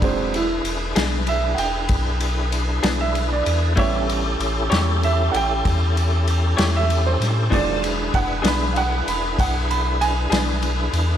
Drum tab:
RD |xxxxxxxxxxxx|xxxxxxxxxxxx|xxxxxxxxxxxx|
SD |---o-----o--|---o--o--o-o|---o-----o--|
BD |o-----o-----|o-----o-----|o-o---o-----|